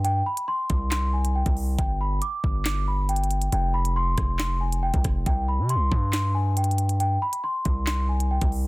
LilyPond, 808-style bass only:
\new Staff \with { instrumentName = "808-style bass" } { \clef bass \time 4/4 \key f \dorian \tempo 4 = 138 g,8 r4 c,4.~ c,16 c,8. | g,,4 r8 g,,2~ g,,8 | f,,4. f,,4.~ f,,16 c,16 f,,8 | c,8. c16. c,16. g,2~ g,8~ |
g,8 r4 c,4.~ c,16 c,8. | }